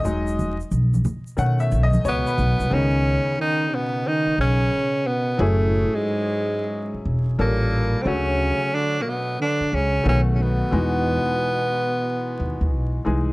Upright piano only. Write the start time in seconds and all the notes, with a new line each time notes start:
Already playing: D#5
0.04 F#3 G#3 D#4
1.37 D#3 A3 C#4 F#5
1.60 E5
1.83 D#5
2.05 C#5
2.27 B4
2.70 C#3 D#3 B3 D#4
5.37 F#3 C#4 E4 G#4
7.39 G3 A#3 C#4 A4
8.04 F#3 A3 F#4 C#5
10.04 D#3 A3 B3 F#4
10.71 E3 G#3 D#4 F#4
13.05 E3 G#3 D#4 G#4